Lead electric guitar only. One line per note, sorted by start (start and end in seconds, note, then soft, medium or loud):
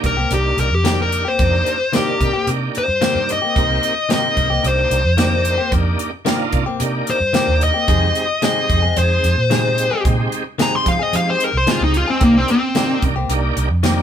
0.06 0.31 A#4 medium
0.34 0.59 G4 medium
0.60 0.75 A#4 medium
0.75 0.99 G4 medium
1.02 1.27 A#4 medium
1.28 1.93 C5 medium
1.97 2.47 G4 medium
2.78 3.29 C5 medium
3.32 4.09 D#5 medium
4.14 4.64 D#5 medium
4.68 5.71 C5 medium
7.10 7.61 C5 medium
7.64 8.41 D#5 medium
8.45 8.96 D#5 medium
8.98 10.02 C5 loud
10.62 10.75 A#5 medium
10.75 10.87 C6 medium
10.88 11.03 F5 medium
11.03 11.14 D#5 medium
11.16 11.28 F5 medium
11.30 11.44 C5 medium
11.44 11.57 A#4 medium
11.57 11.69 C5 loud
11.71 11.82 F4 medium
11.84 11.97 D#4 medium
11.97 12.09 F4 loud
12.10 12.23 C4 medium
12.23 12.38 A#3 medium
12.38 12.49 C4 medium
12.51 13.02 C4 medium